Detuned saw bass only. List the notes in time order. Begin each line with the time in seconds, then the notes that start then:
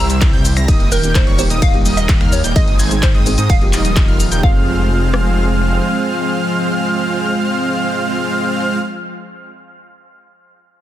0.00 C2
0.33 C2
0.57 C2
0.68 D#1
0.92 D#1
1.27 D#1
1.50 D#1
1.62 D#1
1.85 D#1
2.21 D#2
2.44 D#1
2.56 G#1
2.79 G#1
3.14 G#1
3.38 G#2
3.50 D#1
3.73 D#1
4.08 D#1
4.32 D#1
4.43 F1